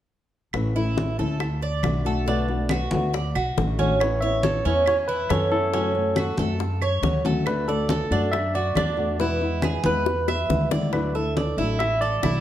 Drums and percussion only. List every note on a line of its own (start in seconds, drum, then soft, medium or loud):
0.53 high bongo medium
0.53 high conga soft
0.53 claves medium
0.76 high conga soft
0.97 high bongo soft
0.97 high conga medium
1.40 high bongo medium
1.40 high conga soft
1.40 claves medium
1.61 high conga soft
1.83 high bongo medium
1.83 low bongo medium
1.83 high conga medium
1.83 claves medium
2.05 high conga soft
2.26 high bongo medium
2.26 high conga soft
2.48 high conga soft
2.69 high bongo medium
2.69 high conga medium
2.69 claves medium
2.91 high bongo soft
2.91 high conga medium
3.14 high bongo medium
3.14 high conga soft
3.35 high bongo soft
3.35 high conga soft
3.35 claves medium
3.57 high bongo medium
3.57 low bongo medium
3.57 high conga medium
3.79 high bongo soft
3.79 high conga medium
4.00 high bongo medium
4.00 high conga soft
4.00 claves medium
4.22 high conga soft
4.43 high bongo soft
4.43 high conga medium
4.86 high bongo medium
4.86 high conga soft
4.86 claves medium
5.09 high conga soft
5.29 high bongo medium
5.29 low bongo medium
5.29 high conga medium
5.29 claves medium
5.52 high conga soft
5.74 high bongo medium
5.74 high conga soft
5.95 high conga soft
6.16 high bongo soft
6.16 high conga medium
6.16 claves medium
6.38 high bongo soft
6.38 high conga medium
6.59 high bongo medium
6.59 high conga soft
6.81 high bongo soft
6.81 high conga soft
6.81 claves medium
7.03 high bongo medium
7.03 low bongo medium
7.03 high conga medium
7.25 high bongo soft
7.25 high conga medium
7.46 high bongo medium
7.46 high conga soft
7.46 claves medium
7.68 high conga soft
7.89 high bongo soft
7.89 high conga medium
8.33 high bongo medium
8.33 high conga soft
8.33 claves medium
8.54 high conga soft
8.75 high bongo medium
8.75 low bongo medium
8.75 high conga medium
8.75 claves medium
8.97 high conga soft
9.19 high bongo medium
9.19 high conga soft
9.41 high conga soft
9.62 high bongo soft
9.62 high conga medium
9.62 claves medium
9.84 high bongo soft
9.84 high conga medium
10.06 high bongo medium
10.06 high conga soft
10.28 high bongo medium
10.28 high conga soft
10.28 claves medium
10.50 low bongo medium
10.50 high conga medium
10.71 low bongo medium
10.71 high conga medium
10.93 high bongo medium
10.93 high conga soft
10.93 claves medium
11.15 high conga soft
11.37 high bongo soft
11.37 high conga medium
11.80 high bongo medium
11.80 high conga soft
11.80 claves medium
12.02 high conga soft
12.23 high bongo medium
12.23 low bongo medium
12.23 high conga medium
12.23 claves medium